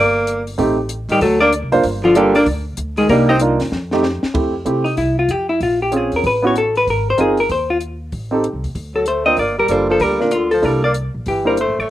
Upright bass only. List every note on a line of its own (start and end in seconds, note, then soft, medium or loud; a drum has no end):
0.00 0.56 G1 medium
0.59 1.06 A1 medium
1.09 1.20 A2 medium
1.22 1.60 D2 medium
1.62 1.72 C2 medium
1.73 1.83 F#1 medium
1.84 2.43 G1 medium
2.47 2.76 D2 medium
2.77 3.06 D2 medium
3.09 3.57 C2 medium
3.72 4.19 F2 medium
4.23 muted upright bass stroke soft
4.34 4.64 F2 medium
4.66 4.95 C3 medium
4.97 5.27 C2 medium
5.28 5.58 F2 medium
5.60 6.08 A#1 medium
6.12 6.23 E2 medium
6.24 6.83 A1 medium
6.87 7.16 G#1 medium
7.18 7.47 G1 medium
7.49 8.09 D#2 medium
8.13 8.51 A1 medium
8.53 8.63 C2 medium
8.64 8.74 D#2 medium
8.75 9.35 D2 medium
9.38 9.67 G1 medium
9.68 9.98 F#1 medium
10.01 10.60 D2 medium
10.63 11.11 C2 medium
11.14 11.25 A#1 medium
11.27 11.65 G1 medium
11.68 11.78 A1 soft
11.79 11.89 G1 medium